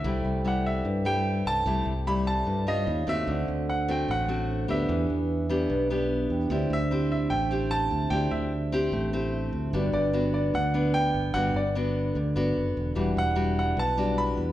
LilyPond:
<<
  \new Staff \with { instrumentName = "Grand piano" } { \time 4/4 \key d \mixolydian \tempo 4 = 149 e''8 r8 fis''8 e''4 g''4 a''8~ | a''8 r8 b''8 a''4 dis''4 e''8~ | e''8 r8 fis''8 g''8 fis''4. e''8~ | e''2.~ e''8 r8 |
r8 e''4 e''8 g''4 a''4 | g''8 e''2 r4. | r8 d''4 d''8 fis''4 g''4 | fis''8 d''2 r4. |
r8 fis''4 fis''8 a''4 b''4 | }
  \new Staff \with { instrumentName = "Vibraphone" } { \time 4/4 \key d \mixolydian << { r1 | r1 | r1 | r1 |
r1 | r2 r8 a''8 e''4 | r1 | r1 |
r1 | } \\ { <e' a' c'' g''>1~ | <e' a' c'' g''>2. <dis' cis'' eis''>4 | <d' a' c'' fis''>2. <d' a' c'' fis''>4 | <d' g' b' e''>2.~ <d' g' b' e''>8 <d' g' b' g''>8 |
<d' g' c'' e''>1~ | <d' g' c'' e''>1 | <d' b' d''>1~ | <d' b' d''>1 |
<e' d'' fis''>1 | } >> }
  \new Staff \with { instrumentName = "Nylon-string guitar" } { \time 4/4 \key d \mixolydian << { <g a e'>4 <g a e'>4 r8 <g a e'>4. | <g a e'>8 r8 <g a e'>4. <g cis' f'>4 <a c' fis'>8~ | <a c' fis'>4 r8 <a c' fis'>4 <a c' fis'>4 <b d' g'>8~ | <b d' g'>4. <b d' g'>4 <b d' g'>4. |
<c' e' g'>8 r8 <c' e' g'>4 r8 <c' e' g'>4. | <c' e' g'>4 r8 <c' e' g'>4 <c' e' g'>4. | <b d' fis'>4 <b d' fis'>4 r8 <b d'>4. | <b d' fis'>8 r8 <b d' fis'>4 r8 <b d' fis'>4. |
<g d' fis'>4 <g d' fis'>4 r8 <g d' fis'>4. | } \\ { c2 g,2 | c2 g,4 r4 | d2 a,2 | e2 b,2 |
d2 a2 | d2 a2 | g2 d2 | g2 d2 |
e2 b,2 | } >> }
  \new Staff \with { instrumentName = "Fingered electric bass" } { \clef bass \time 4/4 \key d \mixolydian c,8 c,4. g,4. c,8 | c,8 c,4. g,4 dis,8 dis,8 | d,8 d,4. a,,4. d,8 | e,8 e,4. b,,4. e,8 |
d,8 d,4. a,,4. d,8 | d,8 d,4. a,,4. d,8 | g,,8 g,,4. d,4. g,,8 | g,,8 g,,4. d,8 g,,8 fis,,8 e,,8 |
e,,8 e,,4. b,,4. e,8 | }
>>